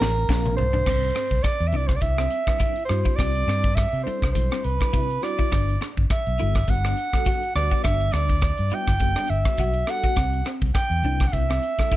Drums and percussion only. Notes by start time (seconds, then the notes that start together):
0.02 snare
0.29 kick, snare
0.46 mid tom
0.58 floor tom
0.74 floor tom
0.86 kick, cross-stick, crash
1.03 closed hi-hat
1.15 cross-stick, closed hi-hat
1.30 kick, closed hi-hat
1.44 kick, cross-stick, closed hi-hat
1.60 closed hi-hat
1.72 closed hi-hat
1.88 kick, cross-stick, closed hi-hat
2.01 kick, closed hi-hat
2.18 cross-stick, closed hi-hat
2.30 closed hi-hat
2.47 kick, cross-stick
2.60 kick, closed hi-hat
2.76 closed hi-hat
2.89 cross-stick, closed hi-hat
3.05 kick, closed hi-hat
3.19 kick, cross-stick, closed hi-hat
3.35 closed hi-hat
3.49 cross-stick, closed hi-hat
3.64 kick, closed hi-hat
3.77 kick, cross-stick, closed hi-hat
3.94 closed hi-hat
4.07 closed hi-hat
4.22 kick, cross-stick, closed hi-hat
4.35 kick, closed hi-hat
4.51 cross-stick, closed hi-hat
4.64 closed hi-hat
4.81 kick, cross-stick, closed hi-hat
4.94 kick, closed hi-hat
5.10 closed hi-hat
5.22 cross-stick, closed hi-hat
5.38 kick, closed hi-hat
5.52 kick, cross-stick, closed hi-hat
5.69 closed hi-hat
5.81 cross-stick, closed hi-hat
5.97 kick, closed hi-hat
6.10 kick, cross-stick, closed hi-hat
6.27 closed hi-hat
6.39 closed hi-hat
6.55 kick, cross-stick, closed hi-hat
6.67 kick, closed hi-hat
6.84 cross-stick, closed hi-hat
6.97 closed hi-hat
7.13 kick, cross-stick
7.26 kick, closed hi-hat
7.43 closed hi-hat
7.55 cross-stick, closed hi-hat
7.71 kick, closed hi-hat
7.84 kick, cross-stick, closed hi-hat
8.00 closed hi-hat
8.13 cross-stick, closed hi-hat
8.29 kick, closed hi-hat
8.42 kick, cross-stick, closed hi-hat
8.57 closed hi-hat
8.71 closed hi-hat
8.87 kick, cross-stick, closed hi-hat
8.99 kick, closed hi-hat
9.15 cross-stick, closed hi-hat
9.28 closed hi-hat
9.45 kick, cross-stick, closed hi-hat
9.57 kick, closed hi-hat
9.73 closed hi-hat
9.87 cross-stick, closed hi-hat
10.03 kick, closed hi-hat
10.16 kick, cross-stick, closed hi-hat
10.33 closed hi-hat
10.45 cross-stick, closed hi-hat
10.61 kick, closed hi-hat
10.75 kick, cross-stick, closed hi-hat
10.91 closed hi-hat
11.04 closed hi-hat
11.20 kick, cross-stick, closed hi-hat
11.33 kick, closed hi-hat
11.50 cross-stick, closed hi-hat
11.63 closed hi-hat
11.79 kick, cross-stick
11.91 kick, closed hi-hat